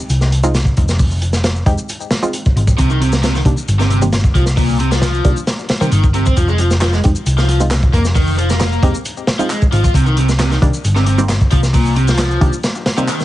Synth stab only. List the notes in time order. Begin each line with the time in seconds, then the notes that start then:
0.43 G#3 C4 D#4 F4
1.66 G#3 C4 D#4 G4
2.23 G#3 C4 D#4 F4
3.46 D#3 G3 A#3 D4
4.02 D#3 G3 A#3 C4
5.25 D#3 G3 A#3 D4
5.81 D#3 G3 A#3 C4
7.04 G#3 C4 D#4 G4
7.60 G#3 C4 D#4 F4
8.83 G#3 C4 D#4 G4
9.39 G#3 C4 D#4 F4
10.62 D#3 G3 A#3 D4
11.18 D#3 G3 A#3 C4
12.41 D#3 G3 A#3 D4
12.98 D#3 G3 A#3 C4